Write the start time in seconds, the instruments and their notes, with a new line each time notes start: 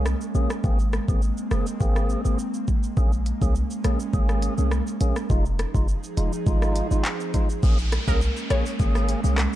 Already playing: 808-style bass C2, analog synth pad G#3 A#3 C#4
0.06 cross-stick, shaker
0.21 shaker
0.35 808-style bass A#1, tonewheel organ A#3 C#4 G#4, shaker
0.50 cross-stick, shaker
0.63 808-style bass G#1, tonewheel organ A#3 C4 G#4, analog synth pad C4, kick, shaker
0.79 shaker
0.93 cross-stick, shaker
1.08 808-style bass G#1, tonewheel organ A#3 C4 G#4, kick, shaker
1.22 shaker
1.37 shaker
1.51 808-style bass F#1, tonewheel organ A#3 C4 G#4, cross-stick, shaker
1.67 shaker
1.80 808-style bass G#1, tonewheel organ A#3 C4 G#4, kick, shaker
1.96 cross-stick, shaker
2.10 shaker
2.25 808-style bass G#1, tonewheel organ A#3 C4 G#4, shaker
2.39 shaker
2.54 shaker
2.68 kick, shaker
2.83 shaker
2.96 808-style bass A#1, analog synth pad G#3 C#4, tonewheel organ A#3 C#4 G#4, kick, swell, shaker
3.12 shaker
3.26 closed hi-hat, shaker
3.41 808-style bass C2, tonewheel organ A#3 C#4 G#4, kick, shaker
3.55 shaker
3.71 shaker
3.84 808-style bass A#1, tonewheel organ A#3 C#4 G#4, cross-stick, closed hi-hat, shaker
4.00 shaker
4.13 808-style bass G#1, tonewheel organ A#3 C#4 G#4, kick, shaker
4.29 cross-stick, shaker
4.42 closed hi-hat, shaker
4.58 808-style bass C2, tonewheel organ A#3 C#4 G#4, shaker
4.71 cross-stick, shaker
4.87 shaker
5.01 808-style bass A#1, tonewheel organ A#3 C#4 G#4, closed hi-hat, shaker
5.16 cross-stick, shaker
5.29 808-style bass F1, analog synth pad F3 D#4 G#4, tonewheel organ G#3 D#4 F4, kick, shaker
5.45 shaker
5.59 cross-stick, closed hi-hat, shaker
5.74 808-style bass F#1, tonewheel organ G#3 D#4 F4, kick, shaker
5.88 shaker
6.04 shaker
6.17 808-style bass F1, tonewheel organ G#3 D#4 F4, closed hi-hat, shaker
6.33 shaker
6.46 808-style bass G#1, tonewheel organ G#3 D#4 F4, kick, shaker
6.62 cross-stick, shaker
6.76 closed hi-hat, shaker
6.91 808-style bass G#1, tonewheel organ G#3 D#4 F4, shaker
7.05 clap, shaker
7.20 shaker
7.34 tonewheel organ G#3 D#4 F4, kick, closed hi-hat, shaker
7.50 shaker
7.63 808-style bass A#1, analog synth pad G#3 A#3 C#4, tonewheel organ A#3 C#4 G#4, kick, downlifter, shaker
7.78 shaker
7.92 cross-stick, closed hi-hat, shaker
8.07 808-style bass C2, tonewheel organ A#3 C#4 G#4, synth pluck A#4, kick, shaker
8.21 shaker
8.37 shaker
8.50 808-style bass A#1, tonewheel organ A#3 C#4 G#4, synth pluck C#5, cross-stick, closed hi-hat, shaker
8.66 shaker
8.79 808-style bass G#1, tonewheel organ A#3 C#4 G#4, kick, shaker
8.95 cross-stick, shaker
9.09 closed hi-hat, shaker
9.24 808-style bass C2, tonewheel organ A#3 C#4 G#4, shaker
9.38 cross-stick, clap, shaker